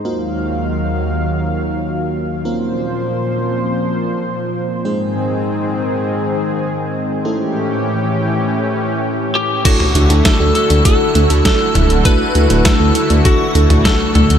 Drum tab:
CC |----------------|----------------|----------------|----------------|
HH |----------------|----------------|----------------|----------------|
SD |----------------|----------------|----------------|----------------|
T2 |----------------|----------------|----------------|----------------|
BD |----------------|----------------|----------------|----------------|

CC |x---------------|----------------|
HH |x-xxx-xxx-xxx-xx|x-xxx-xxx-xxx-xx|
SD |----o-------o---|----o-------o---|
T2 |-o------------o-|-----------o--o-|
BD |o---o---o---o---|o---o---o---o---|